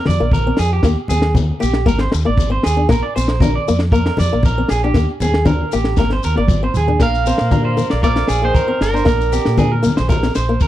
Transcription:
Already playing: C4
0.06 F2 D5, snare, muted conga, high conga, shekere
0.20 A#1 A#3
0.32 A#4, kick, high conga, shekere
0.47 C4
0.57 F2 G#4, snare, shekere
0.73 G4
0.83 D#2 A#3, kick, snare, shekere
1.08 D#2 C4 G#4, low conga, shekere
1.22 snare
1.34 kick, snare, high conga, shekere
1.60 A#1 A#3 G4, muted conga, shekere
1.74 snare
1.86 G#1 A#3 A#4, kick, muted conga, low conga, shekere
1.98 C4 C5, snare
2.12 D#2, muted clean electric guitar stroke, snare, muted conga, shekere
2.25 G#1 A#3 D5
2.37 kick, snare, high conga, shekere
2.50 C4 C5
2.63 D#2 G#4, snare, shekere
2.77 D4
2.89 A#1 A#3 A#4, kick, snare, muted conga, shekere
3.03 D5
3.16 A#1 C4 C5, shekere
3.28 snare
3.40 D4 A#4, kick, high conga, shekere
3.55 D5
3.66 F2 A#3, muted conga, shekere
3.79 snare
3.92 A#3 A#4, kick, shekere
4.06 A#4, muted steel-string acoustic guitar stroke, snare
4.17 F2 D5, snare, muted conga, high conga, shekere
4.33 A#1 A#3
4.43 A#4, kick, high conga, shekere
4.58 C4
4.68 A#1 G#4, snare, shekere
4.84 D4 G4
4.94 D#2 A#3, kick, snare, muted conga, shekere
5.20 D#2 C4 G#4, low conga, shekere
5.34 snare
5.45 D4 A#4, kick, snare, high conga, shekere
5.72 A1 A#3 G4, muted conga, shekere
5.84 snare
5.97 G#1 A#3 A#4, kick, snare, muted conga, low conga, shekere
6.10 C4 C5, snare
6.23 D#2 A#4, muted conga, shekere
6.35 G#1 A#3 D5, high tom
6.48 kick, mid tom, high conga, shekere
6.63 C4 C5
6.74 D#2 G#4, floor tom, shekere
6.87 D4, floor tom
6.99 A#1 A#3 A#4 F5, kick, snare, muted conga, shekere
7.14 shekere
7.25 C4 C5, snare, muted conga, shekere
7.38 A#2, snare, shekere
7.51 D4 A#4, kick, high conga, shekere
7.65 C5
7.77 A#3, high conga, shekere
7.90 A#1 D5, snare, shekere
8.03 F3 A#3 A#4 D5, kick, muted conga, shekere
8.16 C4, snare, shekere
8.28 A#1 G#4, snare, shekere
8.42 D#3 A#3 C5
8.54 A#4, kick, high conga, shekere
8.68 C4 A#4
8.81 G1 D3 A#4, snare, shekere
8.94 D4 C5, shekere
9.05 A#1 A#3 A#4, kick, snare, muted conga, shekere
9.21 shekere
9.32 C4 G4, muted conga, shekere
9.45 A#2, snare, shekere
9.58 D4 G#4, kick, high conga, low conga, shekere
9.72 A#4
9.83 A#3, muted conga, high conga, low conga, shekere
9.97 A#1 C5, snare, shekere
10.09 A#4, muted steel-string acoustic guitar stroke, kick, muted conga, high conga, shekere
10.23 C4, snare, shekere
10.35 A#1 C5, snare, shekere
10.49 A#3
10.60 A#4, kick, high conga, shekere

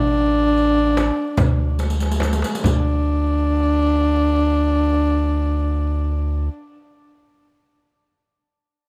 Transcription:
Already playing: A1 D4
0.58 riq, darbuka ka
0.97 riq, darbuka tek, frame drum
1.37 D2, riq, frame drum, darbuka dum
1.79 riq, darbuka tek
1.90 riq
2.00 riq, darbuka ka
2.11 riq
2.20 riq, darbuka tek, frame drum
2.33 riq
2.42 riq, darbuka ka
2.55 riq
2.63 D2 D4, riq, frame drum, darbuka dum

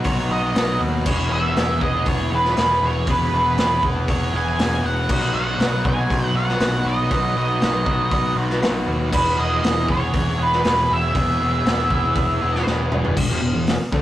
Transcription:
Already playing: F#3 B3 D#4 F#4
0.04 B1 C#5, kick, open hi-hat
0.29 B1 B3 D#4 F#4 D#5
0.54 B1 B2 F#3 B3 D#4 F#4, snare, open hi-hat
0.80 D#2
1.06 E1 E2 B2 E3 B3 E4 G#4 C#5, kick, crash
1.30 E1 E3 B3 E4 G#4 E5
1.55 E1 E3 B3 E4 G#4, snare, open hi-hat
1.81 E1 E3 B3 E4 G#4 D#5, kick
2.06 E1 C#5, kick, open hi-hat
2.30 E1 E3 B3 E4 G#4
2.35 B4
2.45 snare
2.56 E1 E2 B2 E3 B3 E4 G#4, snare, open hi-hat
2.81 E1
2.86 C#5
3.06 E1 E2 B2 E3 B3 E4 G#4 B4, kick, open hi-hat
3.32 E1 E3 B3 E4 G#4 B4
3.57 E1 E3 B3 E4 G#4, snare, open hi-hat
3.83 E1 E3 B3 E4 G#4, kick
4.08 E1 C#5, kick, open hi-hat
4.32 E1 E3 B3 E4 G#4 G#5
4.48 G#5
4.58 E1 E2 B2 E3 B3 E4 G#4, snare, open hi-hat
4.83 E1 F#5
5.09 B1 B2 F#3 B3 D#4 F#4, kick, crash
5.33 B1 B3 D#4 F#4 F#5
5.58 B1 F#3 B3, snare, open hi-hat
5.62 D#4 F#4
5.85 B1 B3 D#4 F#4 G#5, kick
6.10 B1, kick, open hi-hat
6.33 B1 B3 D#4 F#4 F#5
6.49 snare
6.59 B1 B2 F#3 B3 D#4 F#4, snare, open hi-hat
6.84 B1 D#5
7.11 B1 B2 F#3 B3 D#4 F#4, kick, open hi-hat
7.36 B1 B3 D#4 F#4 D#5
7.61 B1 F#3 B3 D#4 F#4, snare, open hi-hat
7.86 B1 B3 D#4 F#4, kick
8.11 B1, kick, open hi-hat
8.36 B1 B3 D#4 F#4
8.50 snare
8.61 B1 B2 F#3 B3 D#4 F#4, snare, open hi-hat
8.87 D#2
9.11 E1 E2 B2 E3 B3 E4 G#4 B4, kick, crash
9.37 E1 E3 B3 E4 G#4 D#5
9.62 E1 E3 B3 E4 G#4, snare, open hi-hat
9.88 E1 E3 B3 E4 G#4 C#5, kick
10.14 E1, kick, open hi-hat
10.38 E1 E3 B3 E4 G#4
10.43 B4
10.52 snare
10.63 E1 E2 B2 E3 B3 E4 G#4, snare, open hi-hat
10.90 E1 E5
11.14 E1 E2 B2 E3 B3 E4 G#4, kick, open hi-hat
11.40 E1 E3 B3 E4 G#4
11.65 E1 E3 B3 E4 G#4, snare, open hi-hat
11.90 E1 E3 B3 E4 G#4, kick
12.15 E1, kick, open hi-hat
12.41 E1 E3 B3 E4 G#4
12.55 snare
12.67 E1 E2 B2 E3 B3 E4 G#4, snare
12.91 E1, mid tom
13.05 floor tom
13.16 E1 E2 B2, kick, crash
13.29 E1 E2 B2
13.42 E1 E2 B2
13.54 E1 E2 B2
13.67 snare, open hi-hat
13.81 muted distorted electric guitar stroke, muted picked electric bass stroke
13.92 D2 D3 A3, kick

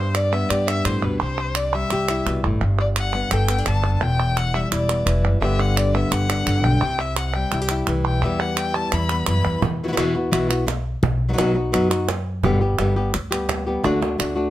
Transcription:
Already playing: G2 G3 B3 C5
0.15 D5, clap
0.33 B3 E5
0.49 G2 G4 D5, clap
0.68 D4 E5, clap
0.85 G2 A2 C5, clap
1.02 D2 B2 B4, clap
1.20 C2 C3 C5
1.55 D5, clap
1.74 G3 E5
1.90 C2 G4, clap
2.08 E4, clap
2.26 C2 B2, clap
2.44 G#1 A2
2.61 G1 G2, clap
2.80 D5
2.96 F#5, clap
3.15 B3
3.31 G1 A4 G5, clap
3.49 B3, clap
3.58 D4
3.66 G1 D3 A5, clap
3.84 F#1
3.94 A5
4.01 E1 E2 G5
4.37 F#5, clap
4.55 G3 E5
4.71 E1 E4 D5, clap
4.89 B3, clap
5.06 E1 E3, clap
5.24 F#1, clap
5.41 G1 G2 D3 B3 D4 G4 E5
5.60 F#5
5.76 D5, clap
5.94 B3 E5
6.11 G1 G4 F#5, clap
6.30 D4, clap
6.47 G1 D3, clap
6.64 B1 G5
6.82 C2 C3
7.00 E5
7.16 F#5, clap
7.28 F#5
7.34 G3 G5, clap
7.52 C2 E4, clap
7.62 G4
7.69 E4, clap
7.87 C2 E3, clap
8.05 B1 G5
8.22 E2 E3 G3 B3 E5
8.26 G4
8.40 F#5
8.57 G5, clap
8.75 G3 A5
8.92 E2 E4 B5, clap
9.09 B3, clap
9.26 F#2 E3 B5, clap
9.45 E2, clap
9.62 E2, muted nylon-string guitar stroke, cajon bass
9.80 E3 B3 E4, cajon slap
9.85 E3 B3 F#4
9.89 E3 E4 F#4
9.93 B3 E4 F#4
9.97 E2 B2 E3 B3 E4 F#4, cajon slap, clap
10.15 B3 E4 F#4
10.32 B1 B2 E3 B3 E4 F#4, clap
10.49 B3 E4 F#4, clap
10.67 muted nylon-string guitar stroke, cajon slap, clap
11.03 B1, muted nylon-string guitar stroke, cajon bass, clap
11.29 F#3 B3 D#4 F#4
11.33 F#3 B3 D#4 F#4
11.38 B1 B2 F#3 B3 D#4 F#4, cajon slap, clap
11.54 B3 D#4 F#4, cajon slap
11.72 F#2 B2 F#3 B3 D#4 F#4, clap
11.90 B3 D#4 F#4, clap
12.08 muted nylon-string guitar stroke, cajon slap, clap
12.43 G1 B2 D3 G3 B3 G4, cajon bass, clap
12.61 G3 B3 G4
12.78 G1 D3 G3 B3 G4, cajon slap, clap
12.96 G3 B3 G4, cajon slap
13.14 D2, muted nylon-string guitar stroke, clap
13.31 G3 B3 G4, clap
13.49 cajon slap, clap
13.67 G3 B3 G4
13.84 D2 D3 A3 D4 F#4, cajon slap
14.01 A3 D4 F#4, cajon slap
14.18 D2 D3 A3 D4 F#4, cajon slap, clap
14.36 A3 D4 F#4

